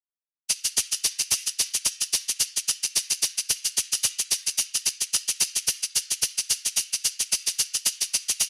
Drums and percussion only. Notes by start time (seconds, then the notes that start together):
0.50 shaker
0.65 shaker
0.78 shaker
0.92 shaker
1.05 shaker
1.19 shaker
1.31 shaker
1.47 shaker
1.60 shaker
1.74 shaker
1.86 shaker
2.01 shaker
2.13 shaker
2.29 shaker
2.40 shaker
2.57 shaker
2.68 shaker
2.83 shaker
2.96 shaker
3.10 shaker
3.23 shaker
3.38 shaker
3.50 shaker
3.65 shaker
3.78 shaker
3.93 shaker
4.04 shaker
4.19 shaker
4.31 shaker
4.47 shaker
4.58 shaker
4.75 shaker
4.86 shaker
5.01 shaker
5.14 shaker
5.29 shaker
5.41 shaker
5.56 shaker
5.68 shaker
5.83 shaker
5.96 shaker
6.11 shaker
6.23 shaker
6.38 shaker
6.50 shaker
6.66 shaker
6.77 shaker
6.93 shaker
7.05 shaker
7.20 shaker
7.32 shaker
7.47 shaker
7.59 shaker
7.74 shaker
7.86 shaker
8.01 shaker
8.14 shaker
8.29 shaker
8.41 shaker